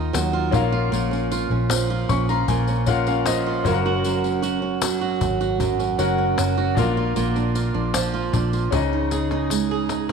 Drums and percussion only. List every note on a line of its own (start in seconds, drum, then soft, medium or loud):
0.14 cajon slap loud
0.14 tambourine medium
0.33 cajon slap soft
0.53 cajon bass loud
0.53 tambourine soft
0.73 cajon slap soft
0.92 cajon slap soft
0.92 tambourine medium
1.13 tambourine soft
1.32 tambourine medium
1.70 cajon slap loud
1.70 tambourine loud
1.90 cajon slap soft
2.09 cajon bass medium
2.09 tambourine medium
2.29 cajon slap soft
2.29 tambourine soft
2.48 cajon bass medium
2.48 tambourine soft
2.67 tambourine soft
2.86 cajon bass medium
2.86 tambourine soft
3.06 cajon slap soft
3.06 tambourine soft
3.26 cajon slap loud
3.26 tambourine medium
3.45 cajon slap soft
3.65 cajon bass loud
3.65 tambourine soft
4.04 cajon slap soft
4.04 tambourine medium
4.24 tambourine soft
4.43 tambourine medium
4.62 cajon slap soft
4.82 cajon slap loud
4.82 tambourine loud
5.02 cajon slap soft
5.21 cajon bass medium
5.21 tambourine soft
5.41 cajon slap soft
5.41 tambourine soft
5.60 cajon bass medium
5.60 tambourine soft
5.79 cajon slap soft
5.79 tambourine soft
5.99 tambourine medium
6.38 cajon slap loud
6.38 tambourine medium
6.57 cajon slap soft
6.77 cajon bass loud
6.77 tambourine soft
7.16 cajon slap soft
7.16 tambourine medium
7.36 tambourine soft
7.56 tambourine medium
7.94 cajon slap loud
7.94 tambourine loud
8.14 cajon slap soft
8.33 cajon bass medium
8.33 tambourine medium
8.53 cajon slap soft
8.53 tambourine soft
8.72 cajon bass medium
8.72 cajon slap medium
8.72 tambourine medium
8.92 cajon slap soft
9.11 cajon slap medium
9.11 tambourine medium
9.31 cajon slap medium
9.50 cajon slap medium
9.50 tambourine medium
9.70 cajon slap soft
9.89 cajon slap medium
9.89 tambourine soft